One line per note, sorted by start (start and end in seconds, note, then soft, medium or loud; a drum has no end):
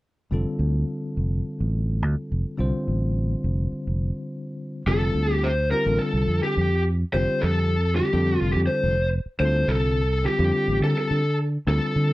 0.31 0.44 F1 medium
0.31 2.55 D3 medium
0.31 2.55 G3 medium
0.31 2.56 C4 medium
0.31 2.56 F4 soft
0.31 2.56 A4 medium
0.59 0.83 D2 medium
1.17 1.40 F1 medium
1.60 2.02 A1 medium
2.02 2.14 D2 medium
2.32 2.43 F1 medium
2.57 2.71 C2 medium
2.57 4.81 D3 medium
2.57 4.82 G3 soft
2.57 4.82 C4 medium
2.57 4.82 F4 medium
2.57 4.83 C5 medium
2.88 3.34 A1 medium
3.44 3.67 F1 medium
3.72 muted fingered electric bass stroke soft
3.87 4.10 F1 medium
4.86 5.09 F1 medium
4.86 5.48 D3 medium
4.86 5.48 G3 medium
4.86 5.49 C4 medium
4.86 5.49 F4 medium
4.86 5.33 A4 medium
4.86 5.49 A4 medium
5.14 5.72 D2 medium
5.33 5.46 G4 medium
5.44 5.71 C5 medium
5.71 5.82 D3 medium
5.71 5.82 G3 soft
5.71 5.82 C4 medium
5.71 5.82 F4 medium
5.71 5.83 G4 medium
5.71 6.01 A#4 medium
5.85 5.98 A1 medium
5.85 6.68 D3 medium
5.85 6.68 G3 medium
5.85 6.68 C4 medium
5.85 6.68 F4 medium
5.85 6.69 A4 medium
5.99 6.43 A4 medium
6.13 6.25 C2 medium
6.28 6.40 F2 medium
6.43 6.82 G4 medium
6.57 7.03 F2 medium
7.12 7.25 F1 medium
7.12 7.74 D3 medium
7.12 7.75 G3 medium
7.12 7.75 C4 medium
7.12 7.75 F4 medium
7.12 7.75 G4 medium
7.12 7.43 C5 loud
7.41 8.00 F2 medium
7.41 7.95 A4 medium
7.96 8.09 D3 medium
7.96 8.09 G3 medium
7.96 8.09 C4 medium
7.96 8.09 F4 medium
7.96 8.38 G4 medium
7.96 8.09 G4 medium
8.12 8.36 F2 medium
8.12 8.95 D3 medium
8.12 8.95 G3 medium
8.12 8.95 C4 medium
8.12 8.95 F4 medium
8.12 8.95 A4 medium
8.38 8.53 F1 medium
8.38 8.50 F4 medium
8.53 8.67 F2 medium
8.53 8.58 G4 medium
8.67 9.08 C5 medium
8.83 9.18 F1 medium
9.26 muted fingered electric bass stroke soft
9.39 9.63 D2 medium
9.39 10.01 D3 medium
9.39 10.01 G3 medium
9.39 10.02 C4 medium
9.39 10.02 F4 medium
9.39 10.02 A4 medium
9.39 9.69 C5 loud
9.68 10.26 C2 medium
9.68 10.26 A4 loud
10.23 10.35 D3 medium
10.23 10.35 G3 medium
10.23 10.35 C4 medium
10.23 10.35 F4 soft
10.23 10.36 G4 medium
10.23 10.79 G4 medium
10.39 10.51 F2 medium
10.39 11.21 D3 medium
10.39 11.21 G3 medium
10.39 11.21 C4 medium
10.39 11.21 F4 medium
10.39 11.22 G4 medium
10.68 10.79 A1 medium
10.81 10.93 D3 medium
10.81 10.97 A4 medium
10.98 11.36 A4 medium
11.11 11.56 D3 medium
11.67 11.79 D2 medium
11.67 12.13 D3 medium
11.67 12.13 G3 medium
11.67 12.13 C4 medium
11.67 12.13 F4 medium
11.67 12.13 A4 medium
11.96 12.13 D3 medium